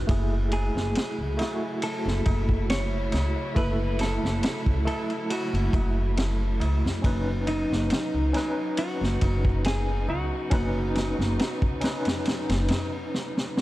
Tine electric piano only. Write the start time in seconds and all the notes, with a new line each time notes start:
0.07 A3 E4 G#4
1.37 A3 E4 F#4
3.55 A3 E4 A4
4.85 A3 E4 A4
7.02 C#4 D#4 B4
8.33 C#4 D#4 B4
10.50 C#4 D#4 B4
11.81 C#4 D#4 B4